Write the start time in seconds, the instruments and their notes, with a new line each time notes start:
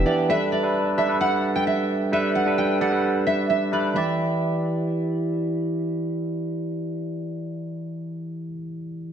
Already playing: tine electric piano E3 B3 D4 G4
0.06 tine electric piano E3 B3 D4 G4, nylon-string guitar D5
0.29 tine electric piano G3 D4 A4 B4, nylon-string guitar E5
0.52 nylon-string guitar D5
0.63 tine electric piano G3 D4 A4 B4
0.97 tine electric piano G3 D4 A4 D5, nylon-string guitar E5
1.09 tine electric piano G3 D4 A4 B4
1.21 nylon-string guitar F#5
1.56 nylon-string guitar G5
1.67 nylon-string guitar E5
2.12 tine electric piano G3 D4 A4 B4, nylon-string guitar E5
2.35 nylon-string guitar F#5
2.46 tine electric piano G3 D4 A4 B4
2.58 nylon-string guitar G5
2.81 tine electric piano G3 D4 A4 D5, nylon-string guitar F#5
2.92 tine electric piano G3 D4 A4 B4
3.27 nylon-string guitar E5
3.50 nylon-string guitar E5
3.72 tine electric piano G3 D4 A4 B4, nylon-string guitar D5
3.94 tine electric piano E3 E4 G4, nylon-string guitar E5
3.98 tine electric piano D5